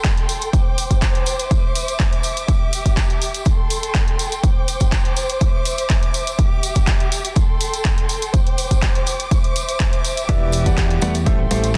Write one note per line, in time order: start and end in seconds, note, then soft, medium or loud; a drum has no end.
0.00 0.52 A4 medium
0.00 1.49 G5 medium
0.00 0.52 C6 medium
0.05 kick loud
0.05 clap loud
0.05 closed hi-hat medium
0.17 closed hi-hat soft
0.29 open hi-hat loud
0.29 tambourine medium
0.41 closed hi-hat soft
0.41 tambourine medium
0.53 2.46 C5 medium
0.53 3.43 D6 medium
0.53 kick loud
0.53 closed hi-hat medium
0.53 tambourine soft
0.78 open hi-hat loud
0.78 tambourine loud
0.91 kick medium
0.91 closed hi-hat soft
0.91 tambourine medium
1.02 kick loud
1.02 clap loud
1.02 closed hi-hat medium
1.02 tambourine soft
1.15 closed hi-hat soft
1.26 open hi-hat loud
1.26 tambourine medium
1.39 closed hi-hat soft
1.39 tambourine medium
1.51 3.44 E5 medium
1.51 kick loud
1.51 closed hi-hat medium
1.51 tambourine soft
1.75 open hi-hat loud
1.75 tambourine medium
1.88 closed hi-hat medium
1.88 tambourine soft
2.00 kick loud
2.00 clap loud
2.00 closed hi-hat medium
2.13 closed hi-hat soft
2.23 open hi-hat loud
2.23 tambourine loud
2.37 closed hi-hat soft
2.37 tambourine medium
2.48 3.45 G4 medium
2.48 kick loud
2.48 closed hi-hat medium
2.48 tambourine soft
2.73 open hi-hat loud
2.73 tambourine loud
2.86 kick medium
2.86 closed hi-hat soft
2.86 tambourine medium
2.97 kick loud
2.97 clap loud
2.97 closed hi-hat medium
2.97 tambourine soft
3.10 closed hi-hat soft
3.22 open hi-hat loud
3.22 tambourine medium
3.34 closed hi-hat soft
3.34 tambourine soft
3.45 4.43 A4 medium
3.45 5.39 G5 medium
3.45 4.43 C6 medium
3.45 kick loud
3.45 closed hi-hat medium
3.45 tambourine soft
3.70 open hi-hat loud
3.70 tambourine medium
3.83 closed hi-hat medium
3.83 tambourine soft
3.95 kick loud
3.95 clap loud
3.95 closed hi-hat medium
3.95 tambourine soft
4.08 closed hi-hat soft
4.19 open hi-hat loud
4.19 tambourine medium
4.32 closed hi-hat soft
4.32 tambourine medium
4.43 6.37 C5 medium
4.43 7.33 D6 medium
4.43 kick loud
4.43 closed hi-hat medium
4.43 tambourine soft
4.68 open hi-hat loud
4.68 tambourine medium
4.80 kick medium
4.80 closed hi-hat medium
4.80 tambourine soft
4.92 kick loud
4.92 clap loud
4.92 closed hi-hat medium
4.92 tambourine soft
5.05 closed hi-hat soft
5.16 open hi-hat loud
5.16 tambourine medium
5.29 closed hi-hat medium
5.29 tambourine soft
5.41 6.37 E5 medium
5.41 kick loud
5.41 closed hi-hat medium
5.41 tambourine soft
5.65 open hi-hat loud
5.65 tambourine medium
5.78 closed hi-hat medium
5.78 tambourine medium
5.89 kick loud
5.89 clap loud
5.89 closed hi-hat medium
5.89 tambourine soft
6.03 closed hi-hat soft
6.14 open hi-hat loud
6.14 tambourine medium
6.27 closed hi-hat medium
6.27 tambourine medium
6.39 7.35 G4 medium
6.39 7.35 E5 medium
6.39 kick loud
6.39 closed hi-hat medium
6.39 tambourine soft
6.63 open hi-hat loud
6.63 tambourine medium
6.75 kick medium
6.75 closed hi-hat medium
6.75 tambourine soft
6.87 kick loud
6.87 clap loud
6.87 closed hi-hat medium
7.00 closed hi-hat soft
7.12 open hi-hat loud
7.12 tambourine medium
7.25 closed hi-hat medium
7.25 tambourine soft
7.36 8.33 A4 medium
7.36 9.29 G5 medium
7.36 8.33 C6 medium
7.36 kick loud
7.36 closed hi-hat medium
7.36 tambourine soft
7.61 open hi-hat loud
7.61 tambourine medium
7.74 closed hi-hat medium
7.74 tambourine soft
7.85 kick loud
7.85 clap loud
7.85 closed hi-hat medium
7.85 tambourine soft
7.98 closed hi-hat soft
8.09 open hi-hat medium
8.09 tambourine medium
8.22 closed hi-hat medium
8.22 tambourine medium
8.34 9.30 C5 medium
8.34 11.24 D6 medium
8.34 kick loud
8.34 closed hi-hat medium
8.34 tambourine soft
8.47 closed hi-hat soft
8.58 open hi-hat loud
8.58 tambourine medium
8.71 kick medium
8.71 closed hi-hat medium
8.71 tambourine soft
8.82 kick loud
8.82 clap loud
8.82 closed hi-hat medium
8.82 tambourine soft
8.95 closed hi-hat soft
9.06 open hi-hat loud
9.06 tambourine medium
9.20 closed hi-hat medium
9.20 tambourine soft
9.31 10.28 C5 medium
9.31 11.25 E5 medium
9.31 kick loud
9.31 closed hi-hat medium
9.31 tambourine soft
9.44 closed hi-hat soft
9.56 open hi-hat loud
9.56 tambourine medium
9.68 closed hi-hat medium
9.68 tambourine soft
9.80 kick loud
9.80 clap loud
9.80 closed hi-hat medium
9.93 closed hi-hat soft
10.05 open hi-hat loud
10.05 tambourine medium
10.17 closed hi-hat medium
10.17 tambourine medium
10.29 10.64 E1 loud
10.29 10.63 E3 medium
10.29 10.63 G4 medium
10.29 11.26 G4 medium
10.29 10.63 B4 medium
10.29 10.63 D5 medium
10.29 10.63 E5 loud
10.29 kick loud
10.29 closed hi-hat medium
10.29 tambourine soft
10.52 open hi-hat loud
10.52 tambourine medium
10.66 11.00 E2 medium
10.66 10.99 E3 medium
10.66 10.99 G4 medium
10.66 10.99 B4 medium
10.66 10.99 D5 medium
10.66 10.99 F#5 medium
10.66 kick medium
10.66 closed hi-hat medium
10.66 tambourine soft
10.77 kick loud
10.77 clap loud
10.77 closed hi-hat medium
10.77 tambourine soft
10.91 closed hi-hat soft
11.01 11.24 E2 medium
11.01 11.13 A3 medium
11.01 11.13 G4 medium
11.01 11.13 B4 medium
11.01 11.13 D5 medium
11.01 11.13 F#5 loud
11.01 open hi-hat loud
11.01 tambourine medium
11.14 closed hi-hat medium
11.14 tambourine medium
11.26 11.49 A1 medium
11.26 11.37 A3 loud
11.26 11.37 G4 medium
11.26 11.78 A4 medium
11.26 11.37 A4 medium
11.26 11.37 C5 medium
11.26 11.37 E5 loud
11.26 11.78 G5 medium
11.26 11.78 C6 medium
11.26 kick loud
11.26 closed hi-hat medium
11.26 tambourine soft
11.51 11.78 A1 medium
11.51 11.67 A3 medium
11.51 11.67 G4 medium
11.51 11.67 A4 medium
11.51 11.67 C5 medium
11.51 11.67 E5 medium
11.51 open hi-hat loud
11.51 tambourine loud
11.64 closed hi-hat medium
11.64 tambourine medium